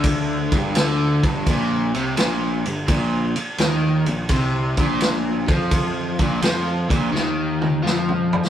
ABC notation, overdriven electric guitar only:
X:1
M:4/4
L:1/8
Q:"Swing" 1/4=85
K:Bb
V:1 name="Overdriven electric guitar" clef=bass
D, G,, D, G,, B,, C, B,, G,, | B,, z E, B,, C, B,,2 F,- | F, B,, F, B,, E,2 F,2 |]